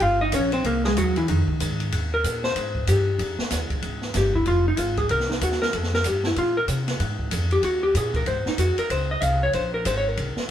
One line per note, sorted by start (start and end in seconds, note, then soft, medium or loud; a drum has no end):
0.00 0.32 G1 medium
0.00 0.21 F4 medium
0.00 0.20 F5 medium
0.00 ride medium
0.21 0.33 D#4 medium
0.21 0.33 D#5 medium
0.32 0.63 A#1 medium
0.32 0.53 C#4 medium
0.32 0.52 C#5 medium
0.32 hi-hat pedal medium
0.32 ride medium
0.52 0.65 C4 medium
0.52 0.64 C5 medium
0.52 ride soft
0.64 0.95 C2 medium
0.64 0.84 A#3 medium
0.64 0.84 A#4 medium
0.64 ride medium
0.84 0.97 G#3 medium
0.84 0.97 G#4 medium
0.84 snare soft
0.97 1.27 D#2 medium
0.97 1.16 F#3 medium
0.97 1.16 F#4 medium
0.97 hi-hat pedal medium
0.97 ride medium
1.16 1.28 E3 medium
1.16 1.28 E4 medium
1.16 ride soft
1.28 1.47 F2 medium
1.28 1.89 D#3 medium
1.28 1.88 D#4 medium
1.28 ride medium
1.48 muted upright bass stroke soft
1.48 kick medium
1.60 1.91 G#2 loud
1.60 hi-hat pedal medium
1.60 ride medium
1.80 ride soft
1.92 2.23 D#2 medium
1.92 ride medium
2.14 2.42 A#4 medium
2.24 2.54 A#2 medium
2.24 hi-hat pedal medium
2.24 ride medium
2.44 2.85 C5 loud
2.44 snare soft
2.55 2.86 G#2 medium
2.55 ride medium
2.75 kick soft
2.87 3.18 G2 medium
2.87 3.36 G4 medium
2.87 hi-hat pedal medium
2.87 ride medium
3.19 3.37 F2 medium
3.19 ride medium
3.39 muted upright bass stroke soft
3.39 snare soft
3.50 3.69 D#2 medium
3.50 snare soft
3.50 hi-hat pedal medium
3.50 ride medium
3.70 muted upright bass stroke soft
3.70 kick medium
3.70 ride soft
3.82 4.13 G#1 medium
3.82 ride medium
4.02 snare soft
4.14 4.45 G1 medium
4.14 4.35 G4 medium
4.14 snare soft
4.14 hi-hat pedal medium
4.14 ride medium
4.34 4.47 E4 medium
4.34 kick soft
4.46 4.77 F1 medium
4.46 4.66 F4 medium
4.46 ride medium
4.68 4.79 D#4 medium
4.77 5.09 G#1 medium
4.77 4.97 F4 medium
4.77 hi-hat pedal medium
4.77 ride medium
4.97 5.10 G#4 medium
4.97 kick medium
4.97 ride soft
5.09 5.40 C2 medium
5.09 5.29 A#4 medium
5.09 ride medium
5.20 snare soft
5.29 5.41 D#4 soft
5.29 snare soft
5.41 5.72 D#2 medium
5.41 5.62 F#4 medium
5.41 hi-hat pedal medium
5.41 ride medium
5.52 snare soft
5.62 5.75 A#4 medium
5.62 snare soft
5.73 6.04 F2 medium
5.73 5.93 A4 medium
5.73 ride medium
5.83 snare soft
5.94 6.07 A#4 medium
5.94 snare soft
6.04 6.36 G2 medium
6.04 6.25 G4 medium
6.04 hi-hat pedal medium
6.04 ride medium
6.24 6.37 E4 medium
6.24 snare soft
6.36 6.67 A#2 medium
6.36 6.57 F4 medium
6.36 ride medium
6.57 6.64 A#4 medium
6.68 6.99 C3 medium
6.68 hi-hat pedal medium
6.68 ride medium
6.88 snare soft
6.88 ride medium
7.00 7.31 G#2 medium
7.00 ride medium
7.19 kick soft
7.31 7.62 F2 medium
7.31 hi-hat pedal soft
7.31 ride medium
7.51 7.64 G4 medium
7.51 ride soft
7.62 7.94 D#2 medium
7.62 7.83 F#4 medium
7.62 ride medium
7.83 7.95 G4 medium
7.94 8.26 A#2 loud
7.94 8.15 G#4 medium
7.94 hi-hat pedal medium
7.94 ride medium
8.14 8.27 A#4 medium
8.14 kick medium
8.14 ride soft
8.26 8.45 G#2 medium
8.26 8.46 C5 medium
8.26 ride medium
8.46 8.59 D#4 medium
8.46 muted upright bass stroke soft
8.46 snare soft
8.58 8.76 F2 medium
8.58 8.78 F#4 medium
8.58 hi-hat pedal medium
8.58 ride medium
8.77 8.90 A#4 medium
8.77 muted upright bass stroke soft
8.77 ride soft
8.90 9.21 C#2 medium
8.90 9.10 C5 medium
8.90 ride medium
9.11 9.23 D#5 medium
9.21 9.52 C2 loud
9.21 9.42 F5 medium
9.21 hi-hat pedal medium
9.21 ride medium
9.43 9.54 C#5 medium
9.53 9.84 A#1 medium
9.53 9.73 C5 medium
9.53 ride medium
9.74 9.85 A#4 medium
9.85 10.16 G#1 medium
9.85 9.96 C5 medium
9.85 hi-hat pedal medium
9.85 ride medium
9.97 10.08 C#5 medium
10.08 10.39 A#4 medium
10.17 10.36 C2 medium
10.17 ride medium
10.37 muted upright bass stroke soft
10.37 snare soft